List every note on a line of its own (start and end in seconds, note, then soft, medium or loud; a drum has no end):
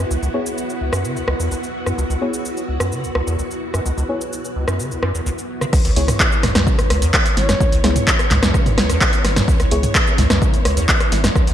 0.00 5.69 B3 medium
0.00 5.69 E4 medium
0.00 5.71 F#4 medium
0.11 0.17 C#2 loud
0.11 shaker medium
0.22 0.29 C#2 loud
0.22 shaker soft
0.34 0.48 B3 medium
0.34 0.48 E4 medium
0.34 0.48 G#4 medium
0.34 0.48 C#5 loud
0.46 shaker medium
0.58 shaker medium
0.70 shaker soft
0.81 0.91 C#2 medium
0.93 1.06 F#2 loud
0.93 cross-stick medium
0.93 shaker medium
1.04 1.18 C#3 loud
1.04 shaker medium
1.16 1.22 C#2 medium
1.16 shaker soft
1.28 1.34 C#2 loud
1.28 cross-stick medium
1.39 1.49 E2 loud
1.39 shaker medium
1.51 1.55 C#2 medium
1.51 shaker medium
1.63 shaker soft
1.86 1.93 F#2 loud
1.86 cross-stick medium
1.86 shaker medium
1.98 2.04 C#2 loud
1.98 shaker medium
2.10 2.16 C#2 medium
2.10 shaker soft
2.21 2.36 B3 medium
2.21 2.36 E4 medium
2.21 2.36 G#4 medium
2.21 2.36 C#5 loud
2.34 shaker medium
2.45 shaker medium
2.57 shaker soft
2.68 2.78 C#2 medium
2.80 2.93 F#2 loud
2.80 cross-stick medium
2.80 shaker medium
2.92 3.05 C#3 loud
2.92 shaker medium
3.04 3.10 C#2 medium
3.04 shaker soft
3.15 3.22 C#2 loud
3.15 cross-stick medium
3.27 3.37 E2 loud
3.27 shaker medium
3.39 3.43 C#2 medium
3.39 shaker medium
3.51 shaker soft
3.74 3.80 F#2 loud
3.74 cross-stick medium
3.74 shaker medium
3.86 3.92 C#2 loud
3.86 shaker medium
3.97 4.04 C#2 loud
3.97 shaker soft
4.09 4.23 B3 medium
4.09 4.23 E4 medium
4.09 4.23 G#4 medium
4.09 4.23 C#5 loud
4.21 shaker medium
4.33 shaker medium
4.45 shaker soft
4.56 4.66 C#2 medium
4.68 4.81 F#2 loud
4.68 cross-stick medium
4.68 shaker medium
4.79 4.93 C#3 loud
4.79 shaker medium
4.91 4.97 C#2 medium
4.91 shaker soft
5.03 5.12 F#2 loud
5.03 cross-stick medium
5.15 5.21 E2 medium
5.15 shaker medium
5.26 5.30 C#2 loud
5.26 shaker medium
5.38 shaker soft
5.61 5.65 C#3 loud
5.61 cross-stick medium
5.61 shaker medium
5.73 5.80 C#2 loud
5.73 11.54 B3 medium
5.73 11.54 E4 medium
5.73 11.54 C#5 medium
5.73 kick loud
5.73 cross-stick medium
5.73 crash loud
5.73 shaker medium
5.85 5.91 C#2 loud
5.85 closed hi-hat medium
5.85 shaker soft
5.96 6.12 C#2 loud
5.96 6.11 B3 medium
5.96 6.11 E4 medium
5.96 6.11 G#4 medium
5.96 6.11 C#5 loud
5.96 open hi-hat loud
6.08 cross-stick medium
6.08 closed hi-hat medium
6.08 mid tom medium
6.08 shaker medium
6.20 kick loud
6.20 clap loud
6.20 shaker medium
6.32 shaker soft
6.43 6.51 C#2 loud
6.43 6.53 C#2 medium
6.43 cross-stick medium
6.43 snare soft
6.43 mid tom medium
6.43 open hi-hat loud
6.55 6.71 C#2 medium
6.55 6.68 F#2 loud
6.55 cross-stick medium
6.55 snare medium
6.55 closed hi-hat medium
6.55 shaker medium
6.67 6.80 C#3 loud
6.67 kick loud
6.67 shaker medium
6.79 6.85 C#2 medium
6.79 cross-stick medium
6.79 closed hi-hat soft
6.79 shaker soft
6.90 7.06 C#2 loud
6.90 6.97 C#2 loud
6.90 cross-stick medium
6.90 open hi-hat loud
7.02 7.12 E2 loud
7.02 closed hi-hat medium
7.02 shaker medium
7.14 7.18 C#2 medium
7.14 kick loud
7.14 cross-stick medium
7.14 clap loud
7.14 shaker medium
7.26 closed hi-hat medium
7.26 shaker soft
7.37 7.53 G#1 loud
7.37 7.84 C#5 loud
7.37 snare soft
7.37 open hi-hat loud
7.49 7.55 F#2 loud
7.49 cross-stick medium
7.49 snare medium
7.49 closed hi-hat medium
7.49 shaker medium
7.60 7.67 C#2 loud
7.60 kick loud
7.60 shaker medium
7.72 7.79 C#2 loud
7.72 closed hi-hat medium
7.72 shaker soft
7.84 8.00 C#2 loud
7.84 7.98 B3 medium
7.84 7.98 E4 medium
7.84 7.98 G#4 medium
7.84 7.98 C#5 loud
7.84 cross-stick medium
7.84 snare medium
7.84 open hi-hat loud
7.96 closed hi-hat medium
7.96 mid tom medium
7.96 shaker medium
8.07 kick loud
8.07 clap loud
8.07 shaker medium
8.19 cross-stick medium
8.19 closed hi-hat soft
8.19 shaker soft
8.31 8.41 C#2 medium
8.31 8.39 C#2 loud
8.31 snare soft
8.31 clap medium
8.31 mid tom medium
8.31 open hi-hat loud
8.43 8.58 C#2 medium
8.43 8.56 F#2 loud
8.43 cross-stick medium
8.43 snare medium
8.43 closed hi-hat medium
8.43 shaker medium
8.54 8.68 C#3 loud
8.54 kick loud
8.54 cross-stick medium
8.54 shaker medium
8.66 8.72 C#2 medium
8.66 closed hi-hat soft
8.66 mid tom medium
8.66 shaker soft
8.78 8.84 C#2 loud
8.78 8.94 C#2 loud
8.78 cross-stick medium
8.78 snare medium
8.78 open hi-hat loud
8.90 8.99 E2 loud
8.90 cross-stick medium
8.90 closed hi-hat medium
8.90 shaker medium
9.01 kick loud
9.01 clap loud
9.01 shaker medium
9.13 closed hi-hat medium
9.13 shaker soft
9.25 9.40 G#1 loud
9.25 cross-stick medium
9.25 snare soft
9.25 open hi-hat loud
9.36 9.43 F#2 loud
9.36 cross-stick medium
9.36 snare medium
9.36 closed hi-hat medium
9.36 mid tom medium
9.36 shaker medium
9.48 9.55 C#2 loud
9.48 kick loud
9.48 shaker medium
9.60 9.66 C#2 loud
9.60 cross-stick medium
9.60 closed hi-hat medium
9.60 shaker soft
9.71 9.87 C#2 loud
9.71 9.86 B3 medium
9.71 9.86 E4 medium
9.71 9.86 G#4 medium
9.71 9.86 C#5 loud
9.71 open hi-hat loud
9.83 closed hi-hat medium
9.83 mid tom medium
9.83 shaker medium
9.95 kick loud
9.95 cross-stick medium
9.95 clap loud
9.95 shaker medium
10.07 shaker soft
10.18 10.26 C#2 loud
10.18 10.28 C#2 medium
10.18 snare soft
10.18 mid tom medium
10.18 open hi-hat loud
10.30 10.46 C#2 medium
10.30 10.43 F#2 loud
10.30 cross-stick medium
10.30 snare medium
10.30 closed hi-hat medium
10.30 shaker medium
10.42 10.55 C#3 loud
10.42 kick loud
10.42 shaker medium
10.54 10.60 C#2 medium
10.54 closed hi-hat soft
10.54 shaker soft
10.65 10.72 C#2 loud
10.65 10.81 C#2 loud
10.65 cross-stick medium
10.65 open hi-hat loud
10.77 10.87 E2 loud
10.77 closed hi-hat medium
10.77 shaker medium
10.89 kick loud
10.89 clap loud
10.89 shaker medium
11.00 cross-stick medium
11.00 closed hi-hat medium
11.00 shaker soft
11.12 11.28 G#1 loud
11.12 snare soft
11.12 open hi-hat loud
11.24 11.30 F#2 loud
11.24 cross-stick medium
11.24 snare medium
11.24 closed hi-hat medium
11.24 shaker medium
11.36 11.42 C#2 loud
11.36 kick loud
11.36 cross-stick medium
11.36 shaker medium
11.47 11.54 C#2 loud
11.47 closed hi-hat medium
11.47 shaker soft